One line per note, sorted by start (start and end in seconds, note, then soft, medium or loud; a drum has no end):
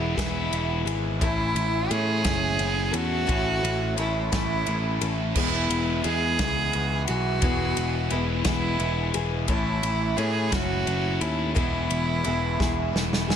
0.00 0.14 E1 loud
0.00 0.17 E2 loud
0.00 0.17 B2 medium
0.00 0.18 E3 medium
0.00 0.17 G#3 medium
0.00 0.16 B3 medium
0.00 0.16 E4 medium
0.00 0.16 E4 loud
0.00 0.16 G#4 medium
0.16 0.49 E1 medium
0.16 0.87 E2 medium
0.16 0.87 B2 medium
0.16 0.50 E3 medium
0.16 0.51 G#3 medium
0.16 0.52 B3 medium
0.16 0.54 E4 loud
0.16 0.91 E4 loud
0.16 0.84 G#4 medium
0.16 kick medium
0.16 snare loud
0.16 ride loud
0.51 0.83 E1 medium
0.51 1.20 E3 medium
0.51 1.19 G#3 medium
0.51 1.19 B3 medium
0.51 1.22 E4 medium
0.51 ride medium
0.85 1.22 G#1 loud
0.85 1.22 B3 soft
0.85 1.21 E4 medium
0.85 1.20 G#4 medium
0.85 ride medium
1.19 1.53 A1 medium
1.19 2.27 A2 medium
1.19 1.89 E3 loud
1.19 1.90 A3 medium
1.19 1.91 C#4 loud
1.19 1.91 E4 loud
1.19 1.92 E4 loud
1.19 1.91 A4 medium
1.19 kick loud
1.19 ride loud
1.55 1.87 A1 medium
1.55 ride medium
1.89 2.22 A2 loud
1.89 2.26 E3 medium
1.89 2.24 A3 medium
1.89 2.24 C#4 medium
1.89 2.23 E4 medium
1.89 2.96 G#4 loud
1.89 ride medium
2.23 2.56 F#1 loud
2.23 2.95 A2 medium
2.23 2.58 E3 medium
2.23 2.59 A3 medium
2.23 2.59 C#4 medium
2.23 2.61 E4 medium
2.23 kick medium
2.23 snare loud
2.23 ride loud
2.58 2.90 F#1 medium
2.58 3.28 E3 medium
2.58 3.29 A3 medium
2.58 3.29 C#4 medium
2.58 3.31 E4 medium
2.58 ride medium
2.91 3.25 E2 loud
2.91 3.26 A3 soft
2.91 3.26 C#4 soft
2.91 3.26 E4 soft
2.91 3.97 F#4 loud
2.91 3.26 A4 medium
2.91 ride medium
3.27 3.60 A1 loud
3.27 4.31 A2 medium
3.27 3.95 E3 medium
3.27 3.96 A3 medium
3.27 3.97 C#4 medium
3.27 3.98 E4 medium
3.27 3.96 A4 medium
3.27 kick loud
3.27 ride medium
3.31 3.99 E4 medium
3.63 3.94 A1 medium
3.63 ride medium
3.96 4.29 A1 medium
3.96 4.34 E3 medium
3.96 4.32 A3 medium
3.96 4.31 C#4 medium
3.96 4.30 E4 medium
3.96 4.31 A4 medium
3.96 ride medium
4.31 4.63 A1 medium
4.31 5.02 A2 medium
4.31 4.65 E3 medium
4.31 4.66 A3 medium
4.31 4.67 C#4 medium
4.31 4.69 E4 medium
4.31 5.06 E4 loud
4.31 5.00 A4 medium
4.31 kick medium
4.31 snare loud
4.31 ride loud
4.65 4.98 A1 medium
4.65 5.35 E3 medium
4.65 5.33 A3 medium
4.65 5.34 C#4 medium
4.65 5.38 E4 medium
4.65 ride medium
5.01 5.32 A1 medium
5.01 5.36 A3 soft
5.01 5.36 C#4 soft
5.01 5.36 E4 soft
5.01 5.35 A4 medium
5.01 ride medium
5.34 5.67 E1 medium
5.34 6.41 E2 medium
5.34 6.39 B2 medium
5.34 6.05 E3 medium
5.34 6.06 G#3 loud
5.34 6.07 B3 loud
5.34 5.99 E4 loud
5.34 6.04 G#4 medium
5.34 kick loud
5.34 crash loud
5.38 6.08 E4 medium
5.70 6.01 E1 medium
5.70 ride medium
6.03 6.36 E2 medium
6.03 6.40 E3 medium
6.03 6.39 G#3 medium
6.03 6.38 B3 medium
6.03 7.03 G#4 loud
6.03 6.38 G#4 medium
6.03 ride medium
6.08 6.38 E4 medium
6.38 6.70 C#2 medium
6.38 7.09 E2 medium
6.38 7.09 B2 medium
6.38 6.72 E3 medium
6.38 6.72 G#3 medium
6.38 6.74 B3 medium
6.38 6.75 E4 medium
6.38 7.08 G#4 medium
6.38 kick medium
6.38 snare loud
6.38 ride loud
6.72 7.05 C#2 medium
6.72 7.41 E3 medium
6.72 7.41 G#3 medium
6.72 7.42 B3 medium
6.72 7.44 E4 medium
6.72 ride medium
7.07 7.40 B1 medium
7.07 7.43 E4 medium
7.07 8.13 F#4 loud
7.07 7.43 G#4 soft
7.07 ride medium
7.11 7.42 B3 soft
7.40 7.73 E1 medium
7.40 8.44 E2 medium
7.40 8.45 B2 medium
7.40 8.08 E3 medium
7.40 8.09 G#3 medium
7.40 8.10 B3 medium
7.40 8.12 E4 medium
7.40 8.12 G#4 medium
7.40 kick loud
7.40 ride loud
7.77 8.08 E1 medium
7.77 ride medium
8.09 8.42 E1 loud
8.09 8.45 E3 medium
8.09 8.43 G#3 medium
8.09 8.43 B3 medium
8.09 8.45 E4 medium
8.09 8.43 E4 medium
8.09 ride medium
8.13 8.44 G#4 medium
8.43 8.77 E1 medium
8.43 9.15 E2 medium
8.43 9.15 B2 medium
8.43 8.76 E3 medium
8.43 8.77 G#3 medium
8.43 8.79 B3 medium
8.43 8.80 E4 medium
8.43 9.19 E4 loud
8.43 9.13 G#4 medium
8.43 kick medium
8.43 snare loud
8.43 ride loud
8.77 9.11 E1 medium
8.77 9.47 E3 medium
8.77 9.46 G#3 medium
8.77 9.47 B3 medium
8.77 9.49 E4 medium
8.77 ride medium
9.14 9.46 E1 loud
9.14 9.49 B3 soft
9.14 9.49 E4 medium
9.14 9.49 G#4 medium
9.14 ride medium
9.47 9.80 A1 medium
9.47 10.51 A2 medium
9.47 10.16 E3 medium
9.47 10.16 A3 medium
9.47 10.17 C#4 loud
9.47 10.18 E4 loud
9.47 10.19 E4 loud
9.47 10.18 A4 medium
9.47 kick medium
9.47 ride medium
9.83 10.15 A1 medium
9.83 ride medium
10.16 10.49 A2 medium
10.16 10.53 E3 medium
10.16 10.52 A3 medium
10.16 10.51 C#4 medium
10.16 10.50 E4 medium
10.16 10.54 G#4 loud
10.16 ride medium
10.50 10.83 F#1 medium
10.50 11.22 A2 medium
10.50 10.85 E3 medium
10.50 10.85 A3 medium
10.50 10.86 C#4 medium
10.50 10.88 E4 loud
10.50 11.22 F#4 loud
10.50 11.20 A4 medium
10.50 kick medium
10.50 snare loud
10.50 ride loud
10.85 11.18 F#1 medium
10.85 11.55 E3 medium
10.85 11.54 A3 medium
10.85 11.54 C#4 medium
10.85 11.57 E4 medium
10.85 ride medium
11.21 11.53 D#2 medium
11.21 11.54 A3 soft
11.21 11.55 C#4 soft
11.21 11.55 E4 medium
11.21 11.54 E4 medium
11.21 11.55 A4 medium
11.21 ride medium
11.54 11.88 E1 medium
11.54 12.59 E2 medium
11.54 12.59 B2 medium
11.54 12.23 E3 medium
11.54 12.24 G#3 medium
11.54 12.26 B3 loud
11.54 13.25 E4 loud
11.54 12.27 E4 medium
11.54 12.25 G#4 medium
11.54 kick loud
11.54 ride medium
11.89 12.21 E1 medium
11.89 ride medium
12.24 12.57 E1 medium
12.24 12.59 E3 medium
12.24 12.59 G#3 medium
12.24 12.58 B3 medium
12.24 12.57 E4 medium
12.24 12.59 G#4 medium
12.24 ride medium
12.58 12.91 E1 loud
12.58 13.30 E2 medium
12.58 13.29 B2 medium
12.58 12.92 E3 medium
12.58 12.94 G#3 medium
12.58 12.95 B3 medium
12.58 12.96 E4 medium
12.58 13.27 G#4 medium
12.58 kick medium
12.58 snare medium
12.93 13.25 E1 medium
12.93 13.36 E3 medium
12.93 13.36 G#3 medium
12.93 13.36 B3 medium
12.93 13.36 E4 medium
12.93 snare medium
13.13 snare medium
13.27 13.36 E1 medium
13.27 13.36 B3 medium
13.27 13.36 E4 medium
13.27 13.36 G#4 medium
13.27 snare loud